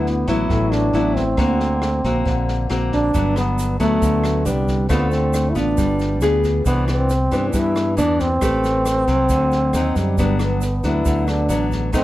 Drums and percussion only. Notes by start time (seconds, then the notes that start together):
0.06 snare
0.28 kick, snare
0.50 kick, snare
0.72 cross-stick, snare
0.94 snare
1.16 kick, snare
1.37 kick, cross-stick, snare
1.60 snare
1.82 cross-stick, snare
2.04 kick, snare
2.26 kick, snare
2.48 snare
2.70 cross-stick, snare
2.92 kick, snare
3.14 kick, snare, shaker
3.36 cross-stick, snare, shaker
3.58 snare, shaker
3.80 kick, snare, shaker
4.02 kick, snare, shaker
4.24 cross-stick, snare, shaker
4.46 snare, shaker
4.68 kick, snare, shaker
4.89 kick, cross-stick, snare, shaker
5.11 snare, shaker
5.33 cross-stick, snare, shaker
5.55 kick, snare, shaker
5.77 kick, snare, shaker
5.99 snare, shaker
6.21 cross-stick, snare, shaker
6.43 kick, snare, shaker
6.65 kick, snare, shaker
6.88 cross-stick, snare, shaker
7.09 snare, shaker
7.32 kick, snare, shaker
7.53 kick, snare, shaker
7.75 cross-stick, snare, shaker
7.98 snare, shaker
8.20 kick, snare, shaker
8.41 kick, cross-stick, snare, shaker
8.64 snare, shaker
8.86 cross-stick, snare, shaker
9.08 kick, snare, shaker
9.29 kick, snare, shaker
9.51 snare, shaker
9.73 cross-stick, snare, shaker
9.96 kick, snare, shaker
10.18 kick, snare, shaker
10.39 cross-stick, snare, shaker
10.61 snare, shaker
10.83 kick, snare, shaker
11.05 kick, snare, shaker
11.27 cross-stick, snare, shaker
11.49 snare, shaker
11.72 kick, snare, shaker
11.93 kick, cross-stick, snare, shaker